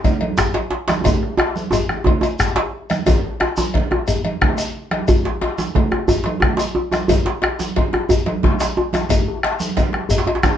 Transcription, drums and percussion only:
0.04 bombo low, cowbell, low conga, shekere
0.21 cowbell, djembe slap, high conga
0.38 bombo rim, djembe slap, high conga, djembe bass, shekere
0.54 bombo rim, cowbell, djembe slap, djembe tone
0.71 djembe slap
0.88 bombo rim, cowbell, djembe slap, high conga, shekere
0.90 djembe slap
1.04 bombo low, cowbell, djembe tone, high conga, low conga, djembe bass, shekere
1.23 bombo rim, djembe tone, high conga
1.37 bombo rim, cowbell, djembe slap, djembe tone
1.56 high conga, shekere
1.71 cowbell, djembe tone, high conga, djembe bass, shekere
1.89 bombo rim, djembe slap, djembe tone, high conga
2.04 bombo low, cowbell, djembe tone, low conga
2.21 bombo rim, cowbell, djembe tone, shekere
2.39 bombo rim, djembe slap, djembe bass, shekere
2.56 cowbell, djembe slap, djembe tone
2.73 djembe slap
2.90 bombo rim, cowbell, high conga, shekere
3.06 bombo low, cowbell, djembe tone, djembe bass, low conga, shekere
3.24 djembe tone
3.40 bombo rim, cowbell, djembe slap, djembe tone
3.57 bombo rim, djembe tone, high conga, shekere
3.74 bombo rim, bombo low, cowbell, high conga, low conga
3.91 bombo rim, djembe slap, djembe tone
4.08 bombo rim, cowbell, high conga, djembe bass, shekere
4.25 cowbell, high conga
4.41 bombo rim, bombo low, djembe slap, low conga
4.57 bombo rim, cowbell, djembe tone, shekere
4.74 djembe slap
4.91 bombo rim, cowbell, djembe slap, high conga
5.08 bombo low, cowbell, low conga, djembe bass, shekere
5.25 djembe slap, djembe tone
5.41 cowbell, djembe slap, djembe tone
5.58 bombo rim, djembe slap, high conga, shekere
5.75 bombo rim, bombo low, cowbell, high conga, djembe tone, low conga
5.91 bombo rim, djembe slap, djembe tone
6.08 bombo rim, cowbell, high conga, djembe bass, shekere
6.24 cowbell, djembe slap, high conga
6.40 bombo rim, bombo low, djembe slap, djembe tone, low conga
6.57 bombo rim, cowbell, djembe slap, djembe tone, shekere
6.75 djembe slap, djembe tone
6.92 bombo rim, cowbell, djembe slap, djembe tone, high conga, shekere
7.08 bombo low, cowbell, djembe bass, low conga, shekere
7.25 djembe slap, djembe tone
7.42 bombo rim, cowbell, djembe slap, djembe tone
7.59 bombo rim, djembe slap, high conga, shekere
7.76 bombo rim, bombo low, cowbell, high conga, djembe tone, low conga
7.93 bombo rim, djembe slap, djembe tone
8.09 bombo rim, cowbell, high conga, djembe bass, shekere
8.26 cowbell, djembe slap, high conga
8.43 bombo low, djembe slap, djembe tone, low conga
8.60 bombo rim, cowbell, djembe slap, djembe tone, shekere
8.77 djembe slap, djembe tone
8.93 bombo rim, cowbell, djembe slap, high conga, djembe tone, shekere
9.09 bombo rim, bombo low, cowbell, low conga, djembe bass, shekere
9.28 djembe tone
9.43 bombo rim, cowbell, djembe slap
9.60 high conga, shekere
9.77 bombo rim, bombo low, cowbell, djembe slap, low conga, shekere
9.93 bombo rim, djembe slap, djembe tone
10.09 cowbell, djembe bass, shekere
10.18 djembe slap
10.27 cowbell, djembe tone
10.35 djembe slap
10.43 bombo rim, bombo low, djembe slap, low conga, shekere

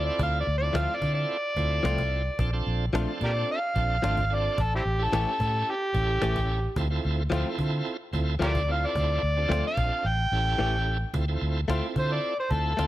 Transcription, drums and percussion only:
0.19 cajon bass
0.47 cajon slap
0.75 cajon slap
0.89 cajon slap
1.02 cajon bass
1.30 cajon slap
1.57 cajon bass
1.85 cajon slap
1.98 cajon bass
2.26 cajon slap
2.39 cajon bass
2.54 cajon slap
2.67 cajon slap
2.81 cajon slap
2.95 cajon slap
3.21 cajon bass
3.49 cajon slap
3.76 cajon bass
4.04 cajon slap
4.17 cajon bass
4.31 cajon slap
4.58 cajon bass
4.72 cajon slap
4.85 cajon slap
5.13 cajon slap
5.27 cajon slap
5.40 cajon bass
5.68 cajon slap
5.95 cajon bass
6.09 cajon slap
6.22 cajon slap
6.36 cajon bass
6.49 cajon slap
6.63 cajon slap
6.76 cajon bass
7.04 cajon slap
7.18 cajon slap
7.32 cajon slap
7.59 cajon bass
7.87 cajon slap
8.13 cajon bass
8.42 cajon slap
8.55 cajon bass
8.69 cajon slap
8.96 cajon bass
9.10 cajon slap
9.24 cajon slap
9.52 cajon slap
9.77 cajon bass
10.05 cajon slap
10.33 cajon slap
10.47 cajon slap
10.74 cajon slap
11.01 cajon slap
11.14 cajon bass
11.42 cajon slap
11.70 cajon slap
11.96 cajon bass
12.24 cajon slap
12.38 cajon slap
12.51 cajon bass
12.65 cajon slap
12.79 cajon slap

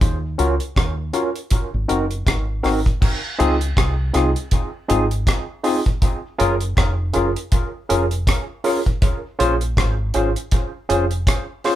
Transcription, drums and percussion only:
0.01 kick, closed hi-hat
0.39 closed hi-hat
0.60 closed hi-hat
0.76 kick, cross-stick, closed hi-hat
1.14 closed hi-hat
1.36 closed hi-hat
1.50 kick, closed hi-hat
1.89 closed hi-hat
2.11 closed hi-hat
2.27 kick, cross-stick, closed hi-hat
2.64 cross-stick, open hi-hat
2.86 kick, closed hi-hat
3.02 kick, crash
3.40 closed hi-hat
3.61 closed hi-hat
3.77 kick, cross-stick, closed hi-hat
4.14 cross-stick, closed hi-hat
4.36 closed hi-hat
4.51 kick, closed hi-hat
4.90 closed hi-hat
5.11 closed hi-hat
5.27 kick, cross-stick, closed hi-hat
5.64 open hi-hat
5.86 kick, closed hi-hat
6.02 kick, closed hi-hat
6.40 closed hi-hat
6.61 closed hi-hat
6.77 kick, cross-stick, closed hi-hat
7.14 closed hi-hat
7.36 closed hi-hat
7.52 kick, closed hi-hat
7.90 closed hi-hat
8.11 closed hi-hat
8.27 kick, cross-stick, closed hi-hat
8.64 open hi-hat
8.86 kick, closed hi-hat
9.02 kick, closed hi-hat
9.40 closed hi-hat
9.61 closed hi-hat
9.77 kick, cross-stick, closed hi-hat
10.14 closed hi-hat
10.36 closed hi-hat
10.52 kick, closed hi-hat
10.90 closed hi-hat
11.11 closed hi-hat
11.27 kick, cross-stick, closed hi-hat
11.64 cross-stick, open hi-hat

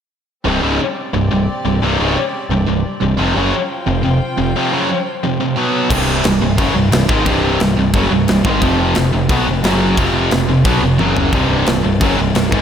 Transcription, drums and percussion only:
5.90 kick, crash
6.24 snare, crash
6.58 kick, crash
6.92 snare, crash
7.09 kick
7.26 kick, crash
7.60 snare, crash
7.94 kick, crash
8.28 snare, crash
8.45 kick
8.62 kick, crash
8.95 snare, crash
9.29 kick, crash
9.64 snare, crash
9.97 kick, crash
10.31 snare, crash
10.65 kick, crash
10.99 high tom
11.17 floor tom
11.33 kick, crash
11.66 snare, crash
12.01 kick, crash
12.35 snare, crash
12.52 kick

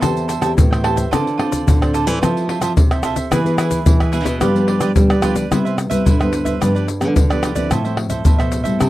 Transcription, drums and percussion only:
0.02 pandeiro, tamborim, shaker, surdo
0.17 pandeiro, shaker
0.29 pandeiro, shaker
0.42 pandeiro, tamborim, shaker
0.58 pandeiro, shaker, surdo
0.73 pandeiro, tamborim, shaker
0.84 pandeiro, tamborim
0.97 pandeiro, shaker, surdo
1.13 pandeiro, tamborim, shaker, surdo
1.27 pandeiro, shaker
1.39 pandeiro, tamborim
1.52 pandeiro, shaker, surdo
1.68 pandeiro, shaker, surdo
1.82 pandeiro, tamborim, shaker, surdo
1.94 pandeiro, shaker
2.08 pandeiro, shaker, surdo
2.23 pandeiro, tamborim, shaker, surdo
2.37 pandeiro, shaker
2.49 pandeiro
2.62 pandeiro, tamborim, shaker
2.77 pandeiro, shaker, surdo
2.91 pandeiro, tamborim, shaker
3.03 pandeiro, tamborim, shaker, surdo
3.16 pandeiro, shaker, surdo
3.32 pandeiro, tamborim, shaker, surdo
3.46 pandeiro, shaker
3.58 pandeiro, tamborim, shaker
3.71 pandeiro, shaker, surdo
3.86 pandeiro, shaker, surdo
4.00 pandeiro, tamborim, shaker, surdo
4.13 pandeiro, shaker
4.26 pandeiro, shaker, surdo
4.41 pandeiro, tamborim, shaker, surdo
4.56 pandeiro, shaker
4.68 pandeiro
4.81 pandeiro, tamborim, shaker
4.96 pandeiro, shaker, surdo
5.10 pandeiro, tamborim, shaker
5.22 pandeiro, tamborim, shaker, surdo
5.36 pandeiro, shaker, surdo
5.52 pandeiro, tamborim, shaker, surdo
5.66 pandeiro, shaker
5.78 pandeiro, tamborim, shaker
5.91 pandeiro, shaker, surdo
6.06 pandeiro, shaker, surdo
6.21 pandeiro, tamborim, shaker, surdo
6.33 pandeiro, shaker
6.46 pandeiro, shaker, surdo
6.62 pandeiro, tamborim, shaker, surdo
6.76 pandeiro, shaker
6.88 pandeiro, shaker
7.01 pandeiro, tamborim, shaker
7.16 pandeiro, shaker, surdo
7.31 pandeiro, tamborim, shaker
7.43 pandeiro, tamborim, shaker, surdo
7.56 pandeiro, shaker, surdo
7.71 pandeiro, tamborim, shaker, surdo
7.85 pandeiro, shaker
7.97 pandeiro, tamborim
8.10 pandeiro, shaker, surdo
8.25 pandeiro, shaker, surdo
8.40 pandeiro, tamborim, shaker, surdo
8.52 pandeiro, shaker
8.65 pandeiro, shaker, surdo
8.81 pandeiro, tamborim, shaker, surdo

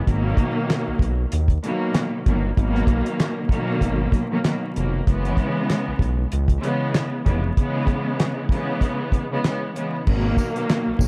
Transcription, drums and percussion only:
0.07 kick, closed hi-hat
0.37 kick, closed hi-hat
0.70 snare, clap, closed hi-hat
0.99 kick, closed hi-hat
1.32 closed hi-hat
1.48 kick, closed hi-hat
1.64 closed hi-hat
1.95 snare, clap, closed hi-hat
2.26 kick, closed hi-hat
2.57 kick, closed hi-hat
2.75 snare
2.87 kick, closed hi-hat
3.06 closed hi-hat
3.20 snare, clap, closed hi-hat
3.49 kick, closed hi-hat
3.81 kick, closed hi-hat
4.12 kick, closed hi-hat
4.45 snare, clap, closed hi-hat
4.76 closed hi-hat
5.07 kick, closed hi-hat
5.25 closed hi-hat
5.37 kick, closed hi-hat
5.70 snare, clap, closed hi-hat
5.99 kick, closed hi-hat
6.32 closed hi-hat
6.48 kick, closed hi-hat
6.63 closed hi-hat
6.95 snare, clap, closed hi-hat
7.26 kick, closed hi-hat
7.57 kick, closed hi-hat
7.87 kick, closed hi-hat
8.20 snare, clap, closed hi-hat
8.49 kick, closed hi-hat
8.81 kick, closed hi-hat
9.12 kick, closed hi-hat
9.45 snare, clap, closed hi-hat
9.76 closed hi-hat
10.07 kick, crash
10.37 kick, closed hi-hat, tambourine
10.56 closed hi-hat
10.70 snare, clap, closed hi-hat
10.99 kick, open hi-hat, tambourine

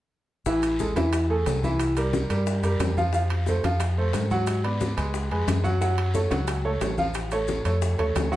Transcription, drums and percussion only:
0.46 high bongo, high conga, long guiro, maracas
0.63 high bongo, high conga, high timbale, maracas
0.79 high bongo, high conga, short guiro, maracas
0.96 high bongo, high conga, high timbale, short guiro, maracas
1.13 high bongo, high conga, high timbale, long guiro, maracas
1.30 high conga
1.46 high bongo, low bongo, high conga, high timbale, low timbale, short guiro, maracas
1.63 high bongo, high conga, short guiro, maracas
1.79 high bongo, high conga, high timbale, long guiro, maracas
1.97 high bongo, high conga, high timbale, maracas
2.13 high bongo, high conga, short guiro, maracas
2.30 high conga, high timbale, short guiro, maracas
2.47 high bongo, high conga, long guiro, maracas
2.63 high bongo, high conga, high timbale, maracas
2.80 high bongo, low bongo, high conga, high timbale, low timbale, short guiro, maracas
2.97 high bongo, high conga, short guiro, maracas
3.13 high bongo, high conga, long guiro, maracas
3.30 high bongo, high conga, high timbale
3.46 high bongo, high conga, short guiro, maracas
3.63 high bongo, high conga, high timbale, short guiro, maracas
3.80 high bongo, high conga, high timbale, long guiro, maracas
3.98 high conga
4.13 high bongo, low bongo, high conga, high timbale, short guiro, maracas
4.30 high bongo, high conga, short guiro, maracas
4.47 high bongo, high conga, high timbale, long guiro, maracas
4.64 high bongo, high conga, high timbale
4.81 high bongo, high conga, short guiro, maracas
4.97 high conga, high timbale, short guiro, maracas
5.14 high bongo, high conga, long guiro, maracas
5.31 high bongo, high conga, high timbale
5.47 high bongo, low bongo, high conga, high timbale, short guiro, maracas
5.64 high bongo, high conga, short guiro, maracas
5.81 high bongo, high conga, long guiro, maracas
5.98 high bongo, high conga, high timbale
6.14 high bongo, high conga, short guiro, maracas
6.31 high bongo, high conga, high timbale, short guiro, maracas
6.47 high bongo, high conga, high timbale, long guiro, maracas
6.64 high conga
6.81 high bongo, low bongo, high conga, high timbale, low timbale, short guiro, maracas
6.98 high bongo, high conga, short guiro, maracas
7.14 high bongo, high timbale, long guiro, maracas
7.31 high bongo, high conga, high timbale, maracas
7.48 high bongo, high conga, short guiro, maracas
7.65 high conga, high timbale, short guiro, maracas
7.82 high bongo, high conga, long guiro, maracas
7.99 high bongo, high conga, high timbale
8.15 high bongo, low bongo, high conga, high timbale, low timbale, short guiro, maracas
8.33 high bongo, short guiro, maracas

